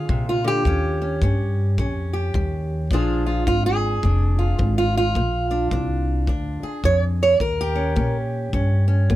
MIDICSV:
0, 0, Header, 1, 5, 480
1, 0, Start_track
1, 0, Tempo, 562852
1, 559, Time_signature, 4, 2, 24, 8
1, 7810, End_track
2, 0, Start_track
2, 0, Title_t, "Steel-string acoustic guitar"
2, 0, Program_c, 0, 25
2, 0, Note_on_c, 0, 62, 50
2, 0, Note_on_c, 0, 65, 48
2, 0, Note_on_c, 0, 68, 95
2, 80, Note_on_c, 0, 48, 57
2, 238, Note_off_c, 0, 65, 0
2, 243, Note_off_c, 0, 68, 0
2, 248, Note_on_c, 0, 65, 73
2, 375, Note_off_c, 0, 48, 0
2, 378, Note_on_c, 0, 50, 62
2, 402, Note_off_c, 0, 65, 0
2, 406, Note_on_c, 0, 67, 88
2, 551, Note_off_c, 0, 62, 0
2, 560, Note_off_c, 0, 50, 0
2, 564, Note_on_c, 0, 51, 73
2, 572, Note_on_c, 0, 61, 52
2, 856, Note_off_c, 0, 61, 0
2, 866, Note_on_c, 0, 61, 43
2, 1004, Note_off_c, 0, 51, 0
2, 1039, Note_off_c, 0, 61, 0
2, 1042, Note_on_c, 0, 55, 62
2, 1049, Note_on_c, 0, 61, 44
2, 1482, Note_off_c, 0, 55, 0
2, 1519, Note_off_c, 0, 61, 0
2, 1520, Note_on_c, 0, 46, 57
2, 1529, Note_on_c, 0, 61, 46
2, 1810, Note_off_c, 0, 67, 0
2, 1820, Note_on_c, 0, 67, 48
2, 1961, Note_off_c, 0, 46, 0
2, 2004, Note_on_c, 0, 55, 61
2, 2443, Note_off_c, 0, 55, 0
2, 2457, Note_off_c, 0, 67, 0
2, 2459, Note_off_c, 0, 61, 0
2, 2486, Note_on_c, 0, 46, 72
2, 2497, Note_on_c, 0, 53, 51
2, 2500, Note_on_c, 0, 62, 51
2, 2507, Note_on_c, 0, 65, 47
2, 2510, Note_on_c, 0, 68, 50
2, 2780, Note_off_c, 0, 65, 0
2, 2783, Note_on_c, 0, 65, 47
2, 2923, Note_off_c, 0, 46, 0
2, 2953, Note_off_c, 0, 65, 0
2, 2956, Note_off_c, 0, 53, 0
2, 2959, Note_on_c, 0, 53, 63
2, 2960, Note_off_c, 0, 68, 0
2, 2964, Note_on_c, 0, 65, 86
2, 3119, Note_off_c, 0, 65, 0
2, 3122, Note_on_c, 0, 68, 88
2, 3399, Note_off_c, 0, 53, 0
2, 3437, Note_on_c, 0, 41, 60
2, 3445, Note_off_c, 0, 62, 0
2, 3449, Note_on_c, 0, 62, 43
2, 3741, Note_on_c, 0, 65, 45
2, 3878, Note_off_c, 0, 41, 0
2, 3911, Note_on_c, 0, 53, 60
2, 4066, Note_off_c, 0, 65, 0
2, 4073, Note_off_c, 0, 68, 0
2, 4077, Note_on_c, 0, 65, 79
2, 4232, Note_off_c, 0, 65, 0
2, 4242, Note_on_c, 0, 65, 85
2, 4355, Note_off_c, 0, 53, 0
2, 4378, Note_off_c, 0, 62, 0
2, 4401, Note_on_c, 0, 46, 73
2, 4697, Note_on_c, 0, 62, 42
2, 4840, Note_off_c, 0, 46, 0
2, 4876, Note_off_c, 0, 62, 0
2, 4881, Note_on_c, 0, 53, 59
2, 4885, Note_on_c, 0, 62, 44
2, 5320, Note_off_c, 0, 53, 0
2, 5352, Note_off_c, 0, 62, 0
2, 5357, Note_on_c, 0, 41, 53
2, 5362, Note_on_c, 0, 62, 41
2, 5657, Note_on_c, 0, 68, 51
2, 5678, Note_off_c, 0, 65, 0
2, 5799, Note_off_c, 0, 41, 0
2, 5834, Note_on_c, 0, 53, 59
2, 5843, Note_on_c, 0, 73, 89
2, 5999, Note_off_c, 0, 73, 0
2, 6163, Note_on_c, 0, 73, 86
2, 6278, Note_off_c, 0, 53, 0
2, 6296, Note_off_c, 0, 68, 0
2, 6297, Note_off_c, 0, 62, 0
2, 6312, Note_on_c, 0, 51, 69
2, 6316, Note_off_c, 0, 73, 0
2, 6320, Note_on_c, 0, 70, 93
2, 6487, Note_on_c, 0, 67, 95
2, 6613, Note_on_c, 0, 61, 46
2, 6758, Note_off_c, 0, 51, 0
2, 6786, Note_on_c, 0, 58, 57
2, 6787, Note_off_c, 0, 61, 0
2, 6790, Note_on_c, 0, 61, 48
2, 6959, Note_off_c, 0, 70, 0
2, 7235, Note_off_c, 0, 58, 0
2, 7275, Note_on_c, 0, 46, 62
2, 7277, Note_off_c, 0, 61, 0
2, 7280, Note_on_c, 0, 61, 46
2, 7567, Note_off_c, 0, 61, 0
2, 7570, Note_on_c, 0, 61, 46
2, 7722, Note_off_c, 0, 46, 0
2, 7764, Note_on_c, 0, 58, 67
2, 7810, Note_off_c, 0, 58, 0
2, 7810, Note_off_c, 0, 61, 0
2, 7810, Note_off_c, 0, 67, 0
2, 7810, End_track
3, 0, Start_track
3, 0, Title_t, "Upright bass"
3, 0, Program_c, 1, 32
3, 78, Note_on_c, 1, 46, 83
3, 544, Note_off_c, 1, 46, 0
3, 556, Note_on_c, 1, 39, 80
3, 1022, Note_off_c, 1, 39, 0
3, 1037, Note_on_c, 1, 43, 88
3, 1502, Note_off_c, 1, 43, 0
3, 1523, Note_on_c, 1, 41, 76
3, 1984, Note_off_c, 1, 41, 0
3, 2000, Note_on_c, 1, 39, 87
3, 2463, Note_off_c, 1, 39, 0
3, 2480, Note_on_c, 1, 34, 84
3, 2942, Note_off_c, 1, 34, 0
3, 2962, Note_on_c, 1, 32, 88
3, 3423, Note_off_c, 1, 32, 0
3, 3435, Note_on_c, 1, 29, 84
3, 3900, Note_off_c, 1, 29, 0
3, 3917, Note_on_c, 1, 32, 92
3, 4380, Note_off_c, 1, 32, 0
3, 4394, Note_on_c, 1, 34, 85
3, 4859, Note_off_c, 1, 34, 0
3, 4873, Note_on_c, 1, 36, 92
3, 5339, Note_off_c, 1, 36, 0
3, 5351, Note_on_c, 1, 38, 77
3, 5627, Note_off_c, 1, 38, 0
3, 5831, Note_on_c, 1, 41, 87
3, 6299, Note_off_c, 1, 41, 0
3, 6312, Note_on_c, 1, 39, 81
3, 6780, Note_off_c, 1, 39, 0
3, 6795, Note_on_c, 1, 46, 88
3, 7262, Note_off_c, 1, 46, 0
3, 7276, Note_on_c, 1, 43, 84
3, 7744, Note_off_c, 1, 43, 0
3, 7760, Note_on_c, 1, 41, 88
3, 7810, Note_off_c, 1, 41, 0
3, 7810, End_track
4, 0, Start_track
4, 0, Title_t, "Muted upright bass strokes"
4, 5647, Note_on_c, 9, 29, 34
4, 5732, Note_off_c, 9, 29, 0
4, 7810, End_track
5, 0, Start_track
5, 0, Title_t, "Drums"
5, 78, Note_on_c, 9, 36, 60
5, 163, Note_off_c, 9, 36, 0
5, 557, Note_on_c, 9, 36, 59
5, 642, Note_off_c, 9, 36, 0
5, 1037, Note_on_c, 9, 36, 65
5, 1123, Note_off_c, 9, 36, 0
5, 1519, Note_on_c, 9, 36, 61
5, 1604, Note_off_c, 9, 36, 0
5, 1998, Note_on_c, 9, 36, 61
5, 2083, Note_off_c, 9, 36, 0
5, 2479, Note_on_c, 9, 36, 63
5, 2564, Note_off_c, 9, 36, 0
5, 2959, Note_on_c, 9, 36, 65
5, 3044, Note_off_c, 9, 36, 0
5, 3438, Note_on_c, 9, 36, 64
5, 3523, Note_off_c, 9, 36, 0
5, 3916, Note_on_c, 9, 36, 60
5, 4001, Note_off_c, 9, 36, 0
5, 4395, Note_on_c, 9, 36, 60
5, 4480, Note_off_c, 9, 36, 0
5, 4873, Note_on_c, 9, 36, 63
5, 4958, Note_off_c, 9, 36, 0
5, 5350, Note_on_c, 9, 36, 62
5, 5435, Note_off_c, 9, 36, 0
5, 5831, Note_on_c, 9, 36, 60
5, 5916, Note_off_c, 9, 36, 0
5, 6312, Note_on_c, 9, 36, 64
5, 6397, Note_off_c, 9, 36, 0
5, 6793, Note_on_c, 9, 36, 67
5, 6878, Note_off_c, 9, 36, 0
5, 7276, Note_on_c, 9, 36, 61
5, 7361, Note_off_c, 9, 36, 0
5, 7759, Note_on_c, 9, 36, 63
5, 7810, Note_off_c, 9, 36, 0
5, 7810, End_track
0, 0, End_of_file